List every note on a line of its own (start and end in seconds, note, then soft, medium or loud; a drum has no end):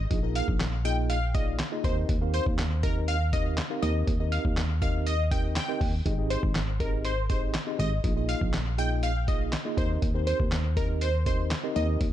0.10 0.42 A#1 loud
0.10 0.18 A#3 loud
0.10 0.18 D#4 medium
0.10 0.19 F4 medium
0.10 0.19 G#4 medium
0.10 0.19 D#5 loud
0.10 kick loud
0.10 closed hi-hat loud
0.23 0.62 A#3 medium
0.23 0.62 D#4 medium
0.23 0.62 F4 medium
0.23 0.62 G#4 medium
0.23 0.62 A#4 medium
0.35 0.47 F5 medium
0.35 closed hi-hat medium
0.48 1.62 A#1 loud
0.48 kick loud
0.61 snare loud
0.61 clap loud
0.61 closed hi-hat medium
0.85 1.16 A#3 medium
0.85 1.16 D#4 medium
0.85 1.16 F4 medium
0.85 1.16 G#4 medium
0.85 1.16 D#5 medium
0.85 0.96 G5 medium
0.85 closed hi-hat medium
1.10 1.32 F5 medium
1.10 closed hi-hat medium
1.34 1.58 A#3 medium
1.34 1.58 D#4 medium
1.34 1.58 F4 medium
1.34 1.58 G#4 medium
1.34 1.58 D5 medium
1.34 1.46 D#5 medium
1.34 kick loud
1.34 closed hi-hat medium
1.59 snare loud
1.59 clap loud
1.59 closed hi-hat loud
1.72 1.84 A#3 medium
1.72 1.83 D#4 medium
1.72 1.84 F4 medium
1.72 1.84 G#4 medium
1.72 1.83 D#5 medium
1.84 2.05 D#2 medium
1.84 2.14 C4 medium
1.84 2.14 D#4 medium
1.84 2.14 G4 medium
1.84 2.14 A#4 medium
1.84 1.95 C5 medium
1.84 2.14 D#5 medium
1.84 kick loud
1.84 closed hi-hat medium
2.09 2.40 D#2 loud
2.09 kick loud
2.09 closed hi-hat medium
2.21 2.60 C4 medium
2.21 2.60 D#4 medium
2.21 2.61 G4 medium
2.21 2.61 A#4 medium
2.21 2.61 F5 medium
2.34 2.45 C5 medium
2.34 closed hi-hat medium
2.46 3.61 D#2 loud
2.46 kick medium
2.59 snare loud
2.59 clap loud
2.59 closed hi-hat medium
2.83 3.15 C4 medium
2.83 3.15 D#4 medium
2.83 3.15 G4 medium
2.83 2.94 A#4 medium
2.83 3.15 A#4 medium
2.83 3.15 D#5 medium
2.83 kick medium
2.83 closed hi-hat medium
3.08 3.30 F5 medium
3.08 closed hi-hat medium
3.33 3.56 C4 medium
3.33 3.57 D#4 medium
3.33 3.57 G4 medium
3.33 3.57 A#4 medium
3.33 3.44 D#5 medium
3.33 3.57 D#5 medium
3.33 kick loud
3.33 closed hi-hat medium
3.58 snare medium
3.58 clap loud
3.58 closed hi-hat loud
3.70 3.81 C4 medium
3.70 3.81 D#4 medium
3.70 3.82 G4 medium
3.70 3.82 A#4 medium
3.70 3.83 F5 medium
3.82 4.03 D#2 medium
3.82 4.12 C4 medium
3.82 4.12 D#4 medium
3.82 4.12 G4 medium
3.82 4.13 A#4 medium
3.82 3.93 D#5 medium
3.82 4.13 D#5 medium
3.82 closed hi-hat medium
4.07 4.39 D#2 loud
4.07 kick loud
4.07 closed hi-hat medium
4.20 4.59 C4 medium
4.20 4.59 D#4 medium
4.20 4.59 G4 medium
4.20 4.59 A#4 medium
4.20 4.59 D#5 medium
4.32 4.43 F5 medium
4.32 closed hi-hat medium
4.45 5.59 D#2 loud
4.45 kick medium
4.57 snare loud
4.57 clap loud
4.57 closed hi-hat medium
4.82 5.13 C4 medium
4.82 5.13 D#4 medium
4.82 5.13 G4 medium
4.82 5.13 A#4 medium
4.82 5.13 D#5 medium
4.82 4.93 F5 medium
4.82 kick medium
4.82 closed hi-hat medium
5.06 5.29 D#5 medium
5.06 closed hi-hat medium
5.31 5.55 C4 medium
5.31 5.55 D#4 medium
5.31 5.55 G4 medium
5.31 5.55 A#4 medium
5.31 5.55 D#5 medium
5.31 5.42 G5 medium
5.31 kick loud
5.31 closed hi-hat medium
5.56 5.91 G5 medium
5.56 snare loud
5.56 clap loud
5.56 closed hi-hat loud
5.68 5.92 C4 medium
5.68 5.92 D#4 medium
5.68 5.92 G4 medium
5.68 5.92 A#4 medium
5.68 5.92 D#5 medium
5.81 6.02 D#2 loud
5.81 kick medium
5.81 open hi-hat medium
6.06 6.37 G#1 loud
6.06 6.13 C4 loud
6.06 6.14 D#4 medium
6.06 6.14 G4 medium
6.06 6.14 G#4 medium
6.06 6.14 D#5 loud
6.06 kick loud
6.06 closed hi-hat loud
6.18 6.57 C4 medium
6.18 6.57 D#4 medium
6.18 6.57 G4 medium
6.18 6.57 G#4 medium
6.18 6.57 D#5 medium
6.30 6.41 C5 medium
6.30 closed hi-hat medium
6.43 7.57 G#1 loud
6.43 kick loud
6.55 snare loud
6.55 clap loud
6.55 closed hi-hat medium
6.80 7.11 C4 medium
6.80 7.11 D#4 medium
6.80 7.11 G4 medium
6.80 7.12 G#4 medium
6.80 6.91 A#4 medium
6.80 7.12 D#5 medium
6.80 kick medium
6.80 closed hi-hat medium
7.05 7.27 C5 medium
7.05 closed hi-hat medium
7.29 7.53 C4 medium
7.29 7.53 D#4 medium
7.29 7.53 G4 medium
7.29 7.53 G#4 medium
7.29 7.41 C5 medium
7.29 7.53 D#5 medium
7.29 kick loud
7.29 closed hi-hat medium
7.54 snare loud
7.54 clap loud
7.54 closed hi-hat loud
7.67 7.90 C4 medium
7.67 7.90 D#4 medium
7.67 7.90 G4 medium
7.67 7.90 G#4 medium
7.67 7.91 D#5 medium
7.79 8.00 G#1 medium
7.79 7.90 D#5 medium
7.79 closed hi-hat medium
8.04 8.35 A#1 loud
8.04 8.12 A#3 medium
8.04 8.12 D#4 medium
8.04 8.12 F4 medium
8.04 8.12 G#4 medium
8.04 8.12 D#5 loud
8.04 kick loud
8.04 closed hi-hat medium
8.16 8.55 A#3 medium
8.16 8.55 D#4 medium
8.16 8.56 F4 medium
8.16 8.56 G#4 medium
8.16 8.56 D#5 medium
8.29 8.40 F5 medium
8.29 closed hi-hat medium
8.41 9.56 A#1 loud
8.41 kick medium
8.54 snare loud
8.54 clap loud
8.54 closed hi-hat medium
8.78 9.10 A#3 medium
8.78 9.10 D#4 medium
8.78 9.10 F4 medium
8.78 9.10 G#4 medium
8.78 9.10 D#5 medium
8.78 8.90 G5 medium
8.78 closed hi-hat medium
9.03 9.25 F5 medium
9.03 closed hi-hat medium
9.28 9.51 A#3 medium
9.28 9.51 D#4 medium
9.28 9.51 F4 medium
9.28 9.52 G#4 medium
9.28 9.39 D#5 medium
9.28 9.52 D#5 medium
9.28 kick loud
9.28 closed hi-hat medium
9.53 snare loud
9.53 clap loud
9.53 closed hi-hat loud
9.65 9.77 A#3 medium
9.65 9.76 D#4 medium
9.65 9.78 F4 medium
9.65 9.78 G#4 medium
9.65 9.76 D#5 medium
9.77 9.98 D#2 medium
9.77 10.07 C4 medium
9.77 10.07 D#4 medium
9.77 10.07 G4 medium
9.77 10.07 A#4 medium
9.77 9.89 C5 medium
9.77 10.07 D#5 medium
9.77 kick loud
9.77 closed hi-hat medium
10.02 10.34 D#2 loud
10.02 kick loud
10.02 closed hi-hat loud
10.14 10.54 C4 medium
10.14 10.54 D#4 medium
10.14 10.54 G4 medium
10.14 10.54 A#4 medium
10.14 10.54 C5 medium
10.27 10.38 C5 medium
10.27 closed hi-hat medium
10.40 11.54 D#2 loud
10.40 kick medium
10.52 snare loud
10.52 clap loud
10.52 closed hi-hat medium
10.76 11.08 C4 medium
10.76 11.08 D#4 medium
10.76 11.08 G4 medium
10.76 10.88 A#4 medium
10.76 11.08 A#4 medium
10.76 11.08 D#5 medium
10.76 kick medium
10.76 closed hi-hat medium
11.01 11.24 C5 medium
11.01 closed hi-hat medium
11.26 11.50 C4 medium
11.26 11.50 D#4 medium
11.26 11.50 G4 medium
11.26 11.50 A#4 medium
11.26 11.38 C5 medium
11.26 11.50 D#5 medium
11.26 kick medium
11.26 closed hi-hat medium
11.51 snare loud
11.51 clap loud
11.51 closed hi-hat loud
11.63 11.75 C4 medium
11.63 11.75 D#4 medium
11.63 11.75 G4 medium
11.63 11.75 A#4 medium
11.63 11.75 D#5 medium
11.76 11.97 D#2 medium
11.76 12.06 C4 medium
11.76 12.06 D#4 medium
11.76 12.06 G4 medium
11.76 12.06 A#4 medium
11.76 11.87 D#5 medium
11.76 12.06 D#5 medium
11.76 closed hi-hat medium
12.01 12.13 D#2 loud
12.01 kick loud
12.01 closed hi-hat medium